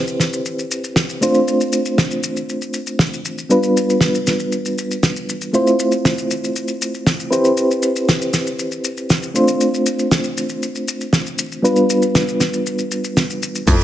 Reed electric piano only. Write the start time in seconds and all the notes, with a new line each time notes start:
Already playing: C4 E4 G4 B4 C5
1.21 A3 C4 D4 F4 C5
3.49 G3 B3 D4 F4 B4
5.53 A3 C4 E4 F4 C5
7.31 C4 E4 G4 B4 C5
9.34 A3 C4 D4 F4 C5
11.62 G3 B3 D4 F4 B4
13.67 F3 A3 C4 E4 A4